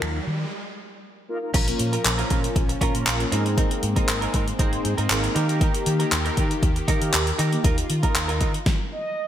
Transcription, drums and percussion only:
0.02 finger snap
1.54 kick, closed hi-hat, crash
1.68 closed hi-hat
1.79 closed hi-hat
1.93 closed hi-hat
2.05 clap, closed hi-hat
2.19 closed hi-hat
2.30 kick, closed hi-hat
2.44 closed hi-hat
2.56 kick, closed hi-hat
2.69 closed hi-hat
2.81 kick, closed hi-hat
2.95 closed hi-hat
3.07 clap, closed hi-hat
3.20 closed hi-hat
3.32 closed hi-hat
3.46 closed hi-hat
3.58 kick, closed hi-hat
3.71 closed hi-hat
3.83 closed hi-hat
3.96 kick, closed hi-hat
4.09 clap, closed hi-hat
4.22 closed hi-hat
4.34 kick, closed hi-hat
4.48 closed hi-hat
4.59 kick, closed hi-hat
4.73 closed hi-hat
4.85 closed hi-hat
4.98 closed hi-hat
5.10 clap, closed hi-hat
5.24 closed hi-hat
5.36 closed hi-hat
5.49 closed hi-hat
5.61 kick, closed hi-hat
5.74 closed hi-hat
5.86 closed hi-hat
6.00 closed hi-hat
6.12 clap, closed hi-hat
6.26 closed hi-hat
6.37 kick, closed hi-hat
6.51 closed hi-hat
6.63 kick, closed hi-hat
6.76 closed hi-hat
6.88 kick, closed hi-hat
7.02 closed hi-hat
7.14 clap, closed hi-hat
7.27 closed hi-hat
7.39 closed hi-hat
7.53 closed hi-hat
7.64 kick, closed hi-hat
7.78 closed hi-hat
7.90 closed hi-hat
8.03 kick, closed hi-hat
8.16 clap, closed hi-hat
8.29 closed hi-hat
8.41 kick, closed hi-hat
8.54 closed hi-hat
8.66 kick, snare

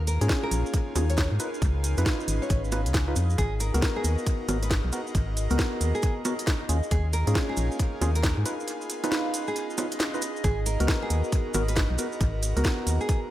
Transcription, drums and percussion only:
0.07 closed hi-hat, cabasa
0.21 closed hi-hat, cabasa
0.29 finger snap, kick, snare, cabasa
0.51 closed hi-hat, cabasa
0.66 cabasa
0.74 kick, closed hi-hat, cabasa
0.96 closed hi-hat, high bongo, cabasa
1.10 closed hi-hat, cabasa
1.17 kick, snare, closed hi-hat, cabasa
1.40 closed hi-hat, cabasa
1.54 cabasa
1.62 kick, closed hi-hat, cabasa
1.84 closed hi-hat, cabasa
1.97 closed hi-hat, cabasa
2.06 finger snap, kick, snare, cabasa
2.20 cabasa
2.28 closed hi-hat, cabasa
2.42 cabasa
2.50 kick, closed hi-hat, cabasa
2.64 cabasa
2.72 closed hi-hat, high bongo, cabasa
2.86 closed hi-hat, cabasa
2.94 kick, snare, closed hi-hat, cabasa
3.16 closed hi-hat, cabasa
3.30 cabasa
3.38 kick, closed hi-hat, cabasa
3.60 closed hi-hat, cabasa
3.74 closed hi-hat, cabasa
3.82 finger snap, kick, snare, cabasa
4.04 closed hi-hat, cabasa
4.18 cabasa
4.27 kick, closed hi-hat, cabasa
4.49 closed hi-hat, high bongo, cabasa
4.63 closed hi-hat, cabasa
4.71 kick, snare, closed hi-hat, cabasa
4.92 closed hi-hat, cabasa
5.07 cabasa
5.15 kick, closed hi-hat, cabasa
5.37 closed hi-hat, cabasa
5.50 closed hi-hat, cabasa
5.59 finger snap, kick, snare, cabasa
5.81 closed hi-hat, cabasa
5.95 cabasa
6.02 kick, closed hi-hat, cabasa
6.25 closed hi-hat, high bongo, cabasa
6.39 closed hi-hat, cabasa
6.47 kick, snare, closed hi-hat, cabasa
6.69 closed hi-hat, cabasa
6.83 cabasa
6.91 kick, closed hi-hat, cabasa
7.13 closed hi-hat, cabasa
7.27 closed hi-hat, cabasa
7.35 finger snap, kick, snare, cabasa
7.57 closed hi-hat, cabasa
7.72 cabasa
7.79 kick, closed hi-hat, cabasa
8.02 closed hi-hat, high bongo, cabasa
8.15 closed hi-hat, cabasa
8.23 kick, snare, closed hi-hat, cabasa
8.46 closed hi-hat, cabasa
8.60 cabasa
8.68 closed hi-hat, cabasa
8.81 cabasa
8.90 closed hi-hat, cabasa
9.04 closed hi-hat, high bongo, cabasa
9.12 finger snap, snare, cabasa
9.34 closed hi-hat, cabasa
9.47 cabasa
9.56 closed hi-hat, cabasa
9.70 cabasa
9.78 closed hi-hat, high bongo, cabasa
9.92 closed hi-hat, cabasa
10.00 snare, closed hi-hat, cabasa
10.14 cabasa
10.22 closed hi-hat, cabasa
10.36 cabasa
10.44 kick, closed hi-hat, cabasa
10.66 closed hi-hat, cabasa
10.80 closed hi-hat, cabasa
10.88 finger snap, kick, snare, cabasa
11.10 closed hi-hat, cabasa
11.24 cabasa
11.32 kick, closed hi-hat, cabasa
11.54 closed hi-hat, high bongo, cabasa
11.68 closed hi-hat, cabasa
11.76 kick, snare, closed hi-hat, cabasa
11.98 closed hi-hat, cabasa
12.12 cabasa
12.21 kick, closed hi-hat, cabasa
12.43 closed hi-hat, cabasa
12.57 closed hi-hat, cabasa
12.64 finger snap, kick, snare, cabasa
12.87 closed hi-hat, cabasa
13.01 cabasa
13.09 kick, closed hi-hat, cabasa

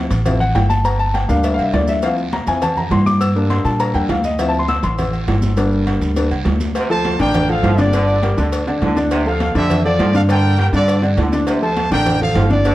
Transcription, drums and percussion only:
0.10 cowbell, high conga, short guiro, maracas
0.25 cowbell, high conga, low conga, low agogo, long guiro, maracas
0.41 high conga, low agogo, maracas
0.55 cowbell, high conga, low timbale, low agogo, short guiro, maracas
0.70 high conga, short guiro, maracas
0.85 cowbell, high conga, low agogo, long guiro, maracas
0.99 high conga, maracas
1.14 cowbell, high conga, low timbale, low agogo, short guiro, maracas
1.29 short guiro, maracas
1.44 cowbell, high conga, low agogo, long guiro, maracas
1.59 high conga, low agogo, maracas
1.73 cowbell, high conga, low timbale, low agogo, short guiro, maracas
1.87 high conga, short guiro, maracas
2.02 cowbell, high conga, low agogo, long guiro, maracas
2.18 high conga, maracas
2.32 cowbell, high conga, low timbale, low agogo, short guiro, maracas
2.47 cowbell, high conga, short guiro, maracas
2.62 cowbell, high conga, low conga, low agogo, long guiro, maracas
2.77 high conga, low conga, low agogo, maracas
2.91 cowbell, high conga, low timbale, low agogo, short guiro, maracas
3.06 high conga, short guiro, maracas
3.21 cowbell, high conga, low agogo, long guiro, maracas
3.36 high conga, maracas
3.50 cowbell, high conga, low timbale, low agogo, short guiro, maracas
3.65 high conga, short guiro, maracas
3.80 cowbell, high conga, low agogo, long guiro, maracas
3.94 high conga, low agogo, maracas
4.09 cowbell, high conga, low timbale, low agogo, short guiro, maracas
4.24 high conga, short guiro, maracas
4.39 cowbell, high conga, low agogo, long guiro, maracas
4.54 high conga, maracas
4.68 cowbell, high conga, low timbale, low agogo, short guiro, maracas
4.83 cowbell, short guiro, maracas
4.98 cowbell, high conga, low conga, low agogo, long guiro, maracas
5.13 high conga, low agogo, maracas
5.27 cowbell, high conga, low timbale, low agogo, short guiro, maracas
5.42 high conga, short guiro, maracas
5.57 cowbell, high conga, low agogo, long guiro, maracas
5.72 high conga, maracas
5.87 cowbell, high conga, low timbale, low agogo, short guiro, maracas
6.01 high conga, short guiro, maracas
6.16 cowbell, low agogo, long guiro, maracas
6.31 low agogo, maracas
6.46 cowbell, high conga, low timbale, low agogo, short guiro, maracas
6.60 high conga, short guiro, maracas
6.75 cowbell, high conga, low agogo, long guiro, maracas
6.90 high conga, maracas
7.05 cowbell, high conga, low timbale, low agogo, short guiro, maracas
7.19 cowbell, high conga, short guiro, maracas
7.34 cowbell, high conga, low conga, low agogo, long guiro, maracas
7.49 high conga, low agogo, maracas
7.64 cowbell, high conga, low timbale, low agogo, short guiro, maracas
7.78 high conga, short guiro, maracas
7.93 cowbell, low agogo, long guiro, maracas
8.08 high conga, maracas
8.22 cowbell, high conga, low timbale, low agogo, short guiro, maracas
8.37 short guiro, maracas
8.52 cowbell, high conga, low agogo, long guiro, maracas
8.67 high conga, low agogo, maracas
8.82 cowbell, high conga, low timbale, low agogo, short guiro, maracas
8.96 high conga, short guiro, maracas
9.11 cowbell, high conga, low agogo, long guiro, maracas
9.26 high conga, maracas
9.40 cowbell, high conga, low timbale, low agogo, short guiro, maracas
9.55 cowbell, high conga, short guiro, maracas
9.70 cowbell, high conga, low conga, low agogo, long guiro, maracas
9.85 high conga, low agogo, maracas
10.00 cowbell, high conga, low timbale, low agogo, short guiro, maracas
10.14 high conga, short guiro, maracas
10.29 cowbell, high conga, low agogo, long guiro, maracas
10.44 high conga, maracas
10.58 cowbell, high conga, low timbale, low agogo, short guiro, maracas
10.74 high conga, short guiro, maracas
10.88 cowbell, high conga, low agogo, long guiro, maracas
11.03 high conga, low agogo, maracas
11.18 cowbell, high conga, low timbale, low agogo, short guiro, maracas
11.32 high conga, short guiro, maracas
11.47 cowbell, high conga, low agogo, long guiro, maracas
11.62 high conga, maracas
11.76 cowbell, high conga, low timbale, low agogo, short guiro, maracas
11.91 cowbell, short guiro, maracas
12.06 cowbell, high conga, low conga, low agogo, long guiro, maracas
12.21 high conga, low conga, low agogo, maracas
12.35 cowbell, high conga, low timbale, low agogo, short guiro, maracas
12.50 high conga, short guiro, maracas
12.65 cowbell, high conga, low agogo, long guiro, maracas

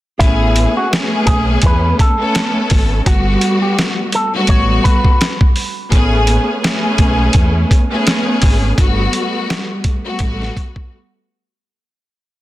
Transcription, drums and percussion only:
0.20 kick, closed hi-hat
0.56 closed hi-hat
0.93 snare, closed hi-hat
1.27 kick, closed hi-hat
1.62 kick, closed hi-hat
1.99 kick, closed hi-hat
2.35 snare, closed hi-hat
2.70 kick, open hi-hat
3.06 kick, closed hi-hat
3.41 closed hi-hat
3.79 snare, closed hi-hat
4.12 closed hi-hat
4.47 kick, closed hi-hat
4.85 kick, closed hi-hat
5.04 kick
5.21 snare, closed hi-hat
5.41 kick
5.56 open hi-hat
5.92 kick, closed hi-hat
6.27 closed hi-hat
6.64 snare, closed hi-hat
6.98 kick, closed hi-hat
7.33 kick, closed hi-hat
7.71 kick, closed hi-hat
8.07 snare, closed hi-hat
8.42 kick, open hi-hat
8.78 kick, closed hi-hat
9.13 closed hi-hat
9.50 snare, closed hi-hat
9.84 kick, closed hi-hat
10.19 kick, closed hi-hat
10.42 snare
10.57 kick, closed hi-hat
10.76 kick

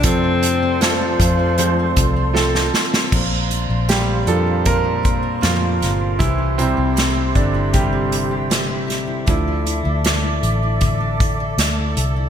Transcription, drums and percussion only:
0.03 kick, hi-hat pedal, open hi-hat
0.43 hi-hat pedal, open hi-hat
0.81 snare, hi-hat pedal, open hi-hat
1.20 kick, hi-hat pedal, open hi-hat
1.58 hi-hat pedal, open hi-hat
1.96 kick, hi-hat pedal, open hi-hat
2.36 snare
2.55 snare
2.74 snare
2.94 snare
3.12 kick, crash
3.51 closed hi-hat
3.89 snare, closed hi-hat
4.27 closed hi-hat
4.65 kick, closed hi-hat
5.05 kick, closed hi-hat
5.43 snare, closed hi-hat
5.82 snare, closed hi-hat
6.20 kick, closed hi-hat
6.59 closed hi-hat
6.97 snare, closed hi-hat
7.35 kick, closed hi-hat
7.74 kick, closed hi-hat
8.12 closed hi-hat
8.51 snare, closed hi-hat
8.90 snare, closed hi-hat
9.27 kick, closed hi-hat
9.67 closed hi-hat
10.04 snare, closed hi-hat
10.43 closed hi-hat
10.81 kick, closed hi-hat
11.20 kick, closed hi-hat
11.58 snare, closed hi-hat
11.97 closed hi-hat

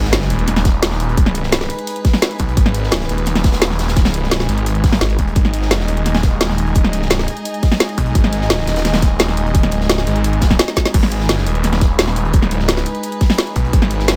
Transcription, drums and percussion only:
0.04 snare
0.13 snare, closed hi-hat
0.21 snare
0.30 closed hi-hat
0.39 closed hi-hat
0.47 snare, closed hi-hat
0.56 snare, closed hi-hat
0.65 kick, snare, closed hi-hat
0.83 snare, closed hi-hat
0.91 snare
1.00 closed hi-hat
1.09 closed hi-hat
1.17 kick, closed hi-hat
1.26 snare
1.35 closed hi-hat
1.43 snare
1.52 snare, closed hi-hat
1.61 snare
1.70 closed hi-hat
1.79 closed hi-hat
1.87 closed hi-hat
1.96 closed hi-hat
2.05 kick, snare, closed hi-hat, open hi-hat
2.13 snare
2.22 snare, closed hi-hat
2.31 closed hi-hat
2.39 kick, closed hi-hat
2.48 closed hi-hat
2.57 kick, closed hi-hat
2.66 snare
2.74 closed hi-hat
2.83 snare
2.91 snare, closed hi-hat
3.00 snare
3.09 closed hi-hat
3.18 closed hi-hat
3.26 snare, closed hi-hat
3.35 snare, closed hi-hat
3.43 kick, snare, closed hi-hat
3.52 snare, closed hi-hat
3.61 snare, closed hi-hat
3.70 snare
3.79 snare, closed hi-hat
3.88 snare, closed hi-hat
3.96 kick, snare, closed hi-hat
4.05 snare, closed hi-hat
4.14 closed hi-hat
4.23 snare
4.31 snare, closed hi-hat
4.40 snare
4.49 closed hi-hat
4.58 closed hi-hat
4.66 closed hi-hat
4.75 closed hi-hat
4.84 kick, snare, closed hi-hat, open hi-hat
4.92 snare
5.01 snare, closed hi-hat
5.10 closed hi-hat
5.19 kick, closed hi-hat
5.27 closed hi-hat
5.36 kick, closed hi-hat
5.45 snare
5.54 closed hi-hat
5.62 snare
5.71 snare, closed hi-hat
5.80 snare
5.88 closed hi-hat
5.97 closed hi-hat
6.06 snare, closed hi-hat
6.15 snare, closed hi-hat
6.23 kick, snare, closed hi-hat
6.41 snare, closed hi-hat
6.49 snare
6.58 closed hi-hat
6.66 closed hi-hat
6.75 kick, closed hi-hat
6.84 snare
6.93 closed hi-hat
7.02 snare
7.10 snare, closed hi-hat
7.19 snare
7.28 closed hi-hat
7.37 closed hi-hat
7.45 closed hi-hat
7.54 closed hi-hat
7.63 kick, snare, closed hi-hat, open hi-hat
7.72 snare
7.80 snare, closed hi-hat
7.89 closed hi-hat
7.98 kick, closed hi-hat
8.06 closed hi-hat
8.15 kick, closed hi-hat
8.24 snare
8.33 closed hi-hat
8.41 snare
8.50 snare, closed hi-hat
8.58 snare
8.67 snare, closed hi-hat
8.76 snare, closed hi-hat
8.85 snare, closed hi-hat
8.94 snare, closed hi-hat
9.02 kick, snare, closed hi-hat
9.19 snare, closed hi-hat
9.28 snare
9.37 closed hi-hat
9.46 closed hi-hat
9.55 kick, closed hi-hat
9.63 snare, closed hi-hat
9.71 closed hi-hat
9.80 snare
9.89 snare, closed hi-hat
9.98 snare
10.07 closed hi-hat
10.16 closed hi-hat
10.24 closed hi-hat
10.33 closed hi-hat
10.41 kick, snare, closed hi-hat
10.50 kick, snare
10.59 snare, closed hi-hat
10.68 snare, closed hi-hat
10.76 kick, snare, closed hi-hat
10.85 snare
10.94 kick, closed hi-hat, crash
11.03 snare
11.11 closed hi-hat
11.20 snare
11.29 snare, closed hi-hat
11.38 snare
11.46 closed hi-hat
11.55 closed hi-hat
11.63 snare, closed hi-hat
11.73 snare, closed hi-hat
11.81 kick, snare, closed hi-hat
11.99 snare, closed hi-hat
12.07 snare
12.16 closed hi-hat, open hi-hat
12.25 closed hi-hat
12.33 kick, closed hi-hat
12.42 snare
12.51 closed hi-hat
12.59 snare
12.68 snare, closed hi-hat
12.77 snare
12.86 closed hi-hat
12.95 closed hi-hat
13.03 closed hi-hat
13.12 closed hi-hat
13.21 kick, snare, closed hi-hat, open hi-hat
13.30 snare
13.38 snare, closed hi-hat
13.47 closed hi-hat
13.56 kick, closed hi-hat, open hi-hat
13.65 closed hi-hat
13.73 kick, closed hi-hat
13.82 snare
13.90 closed hi-hat
13.99 snare
14.08 snare, closed hi-hat

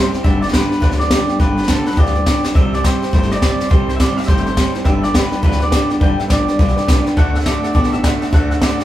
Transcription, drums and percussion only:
0.14 snare
0.25 kick, snare
0.42 snare
0.48 snare
0.53 kick, snare, hi-hat pedal
0.72 snare
0.82 kick, snare
0.91 snare
1.00 snare
1.11 kick, snare, hi-hat pedal
1.29 snare
1.40 kick, snare
1.58 snare
1.63 snare
1.68 kick, snare, hi-hat pedal
1.86 snare
1.92 snare
1.97 kick, snare
2.06 snare
2.15 snare
2.26 kick, snare, hi-hat pedal
2.44 snare
2.55 kick, snare
2.74 snare
2.84 kick, snare, hi-hat pedal
3.02 snare
3.13 kick, snare
3.22 snare
3.31 snare
3.42 kick, snare, hi-hat pedal
3.60 snare
3.71 kick, snare
3.89 snare
4.00 kick, snare, hi-hat pedal
4.17 snare
4.23 snare
4.28 kick, snare
4.37 snare
4.46 snare
4.57 kick, snare, hi-hat pedal
4.75 snare
4.85 kick, snare
5.03 snare
5.14 kick, snare, hi-hat pedal
5.32 snare
5.43 kick, snare
5.52 snare
5.61 snare
5.72 kick, snare, hi-hat pedal
5.90 snare
6.01 kick, snare
6.20 snare
6.30 kick, snare, hi-hat pedal
6.48 snare
6.59 kick, snare
6.68 snare
6.77 snare
6.88 kick, snare, hi-hat pedal
7.06 snare
7.17 kick, snare
7.35 snare
7.40 snare
7.46 kick, snare, hi-hat pedal
7.64 snare
7.75 kick, snare
7.84 snare
7.93 snare
8.04 kick, snare, hi-hat pedal
8.22 snare
8.32 kick, snare
8.51 snare
8.62 kick, snare, hi-hat pedal
8.80 snare

